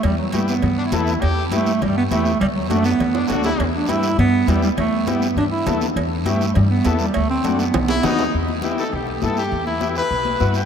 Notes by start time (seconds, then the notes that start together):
0.03 E2 G3, cowbell, high conga, low conga, long guiro
0.18 F#3
0.33 G2 A3 B3 E4 G4, cowbell, high conga, short guiro
0.48 B3, short guiro
0.62 G2, cowbell, high conga, low conga, long guiro
0.78 D4
0.85 E4
0.92 E2 B3 E4 A4, cowbell, high conga, low conga, short guiro
1.07 short guiro
1.20 E2 G4, cowbell, high conga, long guiro
1.51 G2 A3 B3 E4 G4, cowbell, high conga, short guiro
1.66 short guiro
1.82 G2 G3, cowbell, high conga, low conga, long guiro
1.97 B3
2.11 E2 A3 B3 E4 G4, cowbell, high conga, short guiro
2.25 short guiro
2.40 D2 G3, cowbell, high conga, long guiro
2.55 F#3
2.69 F#2 A3 D4 F#4, cowbell, high conga, short guiro
2.84 B3, short guiro
2.99 F#2, cowbell, high conga, low conga, long guiro
3.14 D4, high timbale
3.28 D2 A3 D4 F#4, cowbell, high conga, low timbale, short guiro
3.43 E4, low timbale, short guiro
3.58 E2, cowbell, high conga, long guiro
3.75 D4
3.87 G2 B3 E4 G4, cowbell, high conga, short guiro
4.03 short guiro
4.17 G2 B3, cowbell, high conga, low conga, long guiro
4.47 E2 G3 B3 E4 G4, cowbell, high conga, short guiro
4.62 G3, short guiro
4.77 E2 A3, cowbell, high conga, low conga, long guiro
5.07 G2 B3 E4 G4, cowbell, high conga, short guiro
5.22 short guiro
5.36 G2 D4, cowbell, high conga, low conga, long guiro
5.51 E4
5.66 E2 B3 E4 A4, cowbell, high conga, low conga, low timbale, short guiro
5.81 short guiro
5.96 E2, cowbell, high conga, long guiro
6.25 G2 A3 B3 E4 G4, cowbell, high conga, short guiro
6.41 short guiro
6.55 G2 G3, cowbell, high conga, low conga, long guiro
6.70 B3
6.84 E2 B3 E4 A4, cowbell, high conga, low timbale, short guiro
6.99 G3, short guiro
7.14 D2 A3, cowbell, high conga, long guiro
7.30 C4
7.44 F#2 A3 D4 F#4, cowbell, high conga, short guiro
7.59 B3, short guiro
7.73 B1, cowbell, high conga, low conga, high timbale, long guiro
7.88 E4, low timbale
8.03 D#2 B3 D#4 F#4, cowbell, high conga, low conga, low timbale, short guiro
8.19 low timbale, short guiro
8.33 E2, high conga, long guiro
8.48 high conga
8.62 B3 E4 G4, high conga, short guiro
8.78 A4, short guiro
8.92 B1 G4, high conga, long guiro
9.07 G4, high conga
9.22 G2 B3 E4 A4, high conga, short guiro
9.37 G4, short guiro
9.51 E2, high conga, long guiro
9.66 E4, high conga
9.81 B3 E4 G4, high conga, short guiro
9.96 B4, short guiro
10.11 B1, high conga, long guiro
10.25 high conga
10.40 G2 B3 E4 F#4 B4, high conga, short guiro
10.54 G5, short guiro